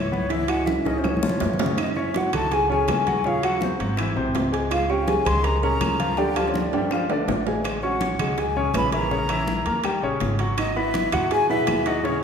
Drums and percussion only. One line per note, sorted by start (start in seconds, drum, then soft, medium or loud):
0.13 high bongo soft
0.13 high conga medium
0.30 high bongo medium
0.30 high conga soft
0.30 high timbale medium
0.48 high bongo soft
0.48 high conga soft
0.48 high timbale medium
0.48 claves medium
0.67 high bongo medium
0.67 high conga medium
0.67 high timbale medium
0.86 high bongo medium
0.86 high conga soft
1.04 high bongo medium
1.04 high conga medium
1.04 low timbale medium
1.04 claves medium
1.17 high conga medium
1.23 low bongo loud
1.29 low conga medium
1.40 low bongo medium
1.40 low timbale loud
1.53 low conga medium
1.59 low bongo medium
1.59 low timbale loud
1.66 low conga medium
1.78 high bongo medium
1.78 high conga soft
1.78 high timbale medium
1.78 claves medium
1.96 high bongo soft
1.96 high conga soft
2.14 high bongo medium
2.14 high conga medium
2.14 high timbale medium
2.33 high conga soft
2.33 low conga medium
2.33 high timbale medium
2.33 claves medium
2.51 high bongo medium
2.51 high conga soft
2.51 high timbale medium
2.70 high bongo soft
2.70 high conga soft
2.88 high bongo medium
2.88 low bongo medium
2.88 high conga medium
2.88 high timbale medium
2.88 low timbale medium
2.88 claves medium
3.07 high bongo soft
3.07 high conga medium
3.07 high timbale medium
3.24 high bongo medium
3.24 high conga soft
3.43 high bongo soft
3.43 high conga soft
3.43 high timbale medium
3.43 claves medium
3.61 high bongo medium
3.61 high conga medium
3.80 high timbale medium
3.97 high bongo medium
3.97 high conga soft
3.97 high timbale medium
3.97 claves medium
4.16 high bongo soft
4.16 high conga soft
4.35 high bongo medium
4.35 low bongo medium
4.35 high conga soft
4.35 high timbale medium
4.35 low timbale medium
4.53 high bongo soft
4.53 high conga soft
4.53 high timbale medium
4.71 high bongo medium
4.71 high conga soft
4.71 high timbale medium
4.71 claves medium
4.89 high bongo soft
4.89 high conga soft
5.08 high bongo medium
5.08 high conga loud
5.08 high timbale medium
5.26 high conga soft
5.26 low conga medium
5.26 high timbale loud
5.26 claves medium
5.44 high bongo medium
5.44 high conga soft
5.44 high timbale medium
5.62 high bongo soft
5.62 high conga soft
5.81 high bongo medium
5.81 low bongo medium
5.81 high conga medium
5.81 high timbale loud
5.81 claves medium
6.00 high bongo soft
6.00 high conga medium
6.00 high timbale medium
6.17 high bongo medium
6.17 high conga soft
6.36 high bongo soft
6.36 high conga soft
6.36 high timbale loud
6.36 claves medium
6.54 high bongo medium
6.54 high conga medium
6.73 high timbale medium
6.91 high bongo medium
6.91 high conga soft
6.91 high timbale medium
6.91 claves medium
7.10 high bongo soft
7.10 high conga soft
7.10 low timbale loud
7.28 high bongo medium
7.28 low bongo medium
7.28 high conga soft
7.28 low timbale medium
7.46 high bongo soft
7.46 high conga soft
7.46 low timbale medium
7.64 high bongo medium
7.64 high conga soft
7.64 high timbale medium
7.64 claves medium
7.82 high bongo soft
7.82 high conga soft
8.01 high bongo medium
8.01 high conga medium
8.01 high timbale medium
8.19 high conga soft
8.19 low conga medium
8.19 high timbale medium
8.19 claves medium
8.38 high bongo medium
8.38 high conga soft
8.38 high timbale medium
8.56 high bongo soft
8.56 high conga soft
8.74 high bongo medium
8.74 low bongo medium
8.74 high conga medium
8.74 high timbale medium
8.74 low timbale medium
8.74 claves medium
8.92 high bongo soft
8.92 high timbale medium
9.11 high bongo medium
9.11 high conga soft
9.29 high bongo soft
9.29 high conga soft
9.29 high timbale medium
9.29 claves medium
9.48 high bongo medium
9.48 high conga medium
9.66 high timbale medium
9.84 high bongo medium
9.84 high conga soft
9.84 high timbale medium
9.84 claves medium
10.03 high bongo soft
10.03 high conga soft
10.20 high bongo medium
10.20 low bongo medium
10.20 high conga soft
10.20 high timbale medium
10.39 high bongo soft
10.39 high conga soft
10.39 high timbale medium
10.58 high bongo medium
10.58 high conga soft
10.58 high timbale medium
10.58 claves medium
10.76 high bongo soft
10.76 high conga soft
10.94 high bongo medium
10.94 high conga loud
10.94 high timbale medium
11.12 high conga soft
11.12 low conga medium
11.12 high timbale loud
11.12 claves medium
11.31 high bongo medium
11.31 high conga soft
11.31 high timbale medium
11.50 high bongo soft
11.50 high conga soft
11.67 high bongo medium
11.67 low bongo medium
11.67 high conga medium
11.67 high timbale loud
11.67 claves medium
11.86 high bongo soft
11.86 high timbale medium
12.05 high bongo medium
12.05 high conga soft